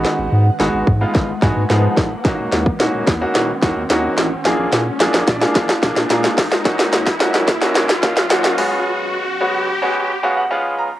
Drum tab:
HH |----------------|x-x-x-x-x-x-x-x-|x-x-x-x-x-x-x-o-|x-x-x-x-x-x-x-o-|
SD |o---o---o-o-o-o-|o-o-o-o-o-o-o-o-|o-o-oooooooooooo|oooooooooooooo--|
BD |------o-o-o---o-|o--o--o---o-----|------o-o-o---o-|o--o--o---o-----|

HH |----------------|
SD |----------------|
BD |----------------|